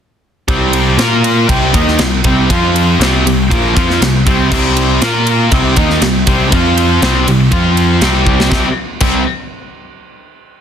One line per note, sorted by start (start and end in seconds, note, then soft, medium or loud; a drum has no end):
0.48 0.95 C2 loud
0.48 0.99 C3 medium
0.48 0.99 G3 medium
0.48 0.99 C4 loud
0.48 0.98 E4 medium
0.48 0.99 C5 medium
0.48 0.98 G5 medium
0.48 kick loud
0.48 ride loud
0.73 ride medium
0.97 1.45 A#2 loud
0.97 1.49 A#3 medium
0.97 1.49 F4 medium
0.97 1.49 F4 loud
0.97 1.49 A#4 medium
0.97 1.49 A#4 loud
0.97 1.49 A#5 medium
0.97 snare loud
0.97 ride medium
1.24 ride medium
1.48 1.72 C2 medium
1.48 1.74 C3 medium
1.48 1.74 G3 loud
1.48 1.75 C4 loud
1.48 2.49 E4 medium
1.48 2.49 C5 medium
1.48 2.48 G5 medium
1.48 kick loud
1.48 ride loud
1.74 1.98 D#2 medium
1.74 1.99 D#3 medium
1.74 2.00 A#3 medium
1.74 2.00 D#4 loud
1.74 kick loud
1.74 ride medium
1.88 snare soft
1.99 2.23 C2 medium
1.99 2.20 C3 medium
1.99 2.21 G3 medium
1.99 snare loud
1.99 ride loud
2.24 2.48 C2 loud
2.24 2.50 C3 medium
2.24 2.50 G3 loud
2.24 2.51 C4 loud
2.24 kick loud
2.24 ride medium
2.49 2.97 F2 medium
2.49 3.00 F3 medium
2.49 3.01 C4 loud
2.49 2.99 F4 medium
2.49 3.01 F4 loud
2.49 4.99 C5 medium
2.49 3.00 C6 medium
2.49 kick loud
2.49 ride loud
2.76 ride medium
2.99 3.23 C2 medium
2.99 3.25 C3 medium
2.99 3.25 G3 loud
2.99 3.26 C4 loud
2.99 5.00 E4 medium
2.99 5.00 G5 medium
2.99 snare loud
2.99 ride medium
3.25 3.49 C2 medium
3.25 3.46 C3 medium
3.25 3.46 G3 medium
3.25 ride medium
3.51 3.74 A#1 medium
3.51 3.76 A#2 loud
3.51 3.76 F3 loud
3.51 3.76 A#3 loud
3.51 kick loud
3.51 ride loud
3.77 4.00 F2 medium
3.77 4.01 F3 medium
3.77 4.01 C4 medium
3.77 4.02 F4 medium
3.77 kick loud
3.77 ride medium
3.90 snare soft
4.01 4.24 C2 medium
4.01 4.22 C3 medium
4.01 4.22 G3 medium
4.01 snare loud
4.01 ride loud
4.26 4.50 C2 loud
4.26 4.51 C3 medium
4.26 4.51 G3 loud
4.26 4.52 C4 loud
4.26 kick loud
4.26 ride medium
4.51 4.98 C2 medium
4.51 5.01 C3 medium
4.51 5.02 G3 loud
4.51 5.02 C4 loud
4.51 kick loud
4.51 crash medium
4.77 ride medium
5.00 5.48 A#2 medium
5.00 5.52 A#3 medium
5.00 5.51 F4 medium
5.00 5.52 F4 loud
5.00 5.51 A#4 medium
5.00 5.52 A#4 loud
5.00 5.51 A#5 medium
5.00 snare loud
5.00 ride loud
5.27 ride medium
5.51 5.75 C2 medium
5.51 5.77 C3 medium
5.51 5.77 G3 medium
5.51 5.77 C4 loud
5.51 6.51 E4 medium
5.51 7.01 C5 medium
5.51 6.51 G5 medium
5.51 kick loud
5.51 ride loud
5.76 6.00 D#2 medium
5.76 6.02 D#3 medium
5.76 6.02 A#3 medium
5.76 6.02 D#4 loud
5.76 kick loud
5.76 ride medium
5.90 snare soft
6.01 6.25 C2 medium
6.01 6.23 C3 medium
6.01 6.23 G3 medium
6.01 snare loud
6.01 ride loud
6.27 6.50 C2 medium
6.27 6.52 C3 loud
6.27 6.52 G3 loud
6.27 6.52 C4 loud
6.27 kick loud
6.27 ride medium
6.51 6.98 F2 medium
6.51 7.02 F3 medium
6.51 7.02 C4 loud
6.51 7.01 F4 medium
6.51 8.49 C6 medium
6.51 kick loud
6.51 ride loud
6.55 7.03 F4 loud
6.78 ride medium
7.01 7.25 C2 medium
7.01 7.26 C3 medium
7.01 7.27 G3 loud
7.01 7.27 C4 medium
7.01 7.51 G4 medium
7.01 7.51 E5 medium
7.01 snare loud
7.01 ride loud
7.27 7.50 C2 medium
7.27 7.47 C3 medium
7.27 7.47 G3 medium
7.27 ride medium
7.51 7.98 F2 medium
7.51 8.01 F3 medium
7.51 8.01 C4 medium
7.51 8.01 F4 medium
7.51 8.02 F4 loud
7.51 8.01 C5 medium
7.51 kick loud
7.51 ride loud
7.77 ride medium
8.00 8.48 C2 medium
8.00 8.49 C3 medium
8.00 8.50 G3 loud
8.00 8.50 C4 loud
8.00 8.49 G4 medium
8.00 8.51 E5 medium
8.00 snare loud
8.00 ride medium
8.27 kick medium
8.40 snare medium
8.50 8.65 C2 loud
8.50 8.66 C3 medium
8.50 8.67 G3 loud
8.50 8.74 C4 medium
8.50 8.67 C4 loud
8.50 8.67 E4 loud
8.50 8.74 G4 medium
8.50 8.74 D5 medium
8.50 kick loud
8.50 snare medium
9.00 9.25 C2 medium
9.00 9.21 C3 loud
9.00 9.22 G3 loud
9.00 9.22 C4 loud
9.00 9.22 E4 loud
9.00 kick loud
9.00 crash medium